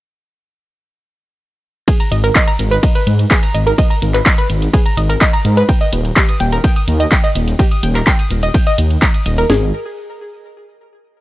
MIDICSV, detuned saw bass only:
0, 0, Header, 1, 2, 480
1, 0, Start_track
1, 0, Key_signature, 5, "minor"
1, 0, Tempo, 476190
1, 1893, Time_signature, 4, 2, 24, 8
1, 11297, End_track
2, 0, Start_track
2, 0, Title_t, "Detuned saw bass"
2, 0, Program_c, 0, 39
2, 2131, Note_on_c, 0, 32, 103
2, 2318, Note_off_c, 0, 32, 0
2, 2612, Note_on_c, 0, 32, 82
2, 2799, Note_off_c, 0, 32, 0
2, 3092, Note_on_c, 0, 44, 87
2, 3279, Note_off_c, 0, 44, 0
2, 3573, Note_on_c, 0, 32, 90
2, 3759, Note_off_c, 0, 32, 0
2, 4053, Note_on_c, 0, 32, 104
2, 4239, Note_off_c, 0, 32, 0
2, 4533, Note_on_c, 0, 32, 90
2, 4719, Note_off_c, 0, 32, 0
2, 5012, Note_on_c, 0, 32, 95
2, 5199, Note_off_c, 0, 32, 0
2, 5492, Note_on_c, 0, 44, 80
2, 5679, Note_off_c, 0, 44, 0
2, 5973, Note_on_c, 0, 27, 102
2, 6159, Note_off_c, 0, 27, 0
2, 6453, Note_on_c, 0, 27, 86
2, 6639, Note_off_c, 0, 27, 0
2, 6933, Note_on_c, 0, 39, 88
2, 7119, Note_off_c, 0, 39, 0
2, 7413, Note_on_c, 0, 27, 94
2, 7599, Note_off_c, 0, 27, 0
2, 7892, Note_on_c, 0, 27, 104
2, 8079, Note_off_c, 0, 27, 0
2, 8372, Note_on_c, 0, 27, 90
2, 8559, Note_off_c, 0, 27, 0
2, 8852, Note_on_c, 0, 39, 81
2, 9039, Note_off_c, 0, 39, 0
2, 9332, Note_on_c, 0, 27, 91
2, 9519, Note_off_c, 0, 27, 0
2, 9572, Note_on_c, 0, 32, 98
2, 9796, Note_off_c, 0, 32, 0
2, 11297, End_track
0, 0, End_of_file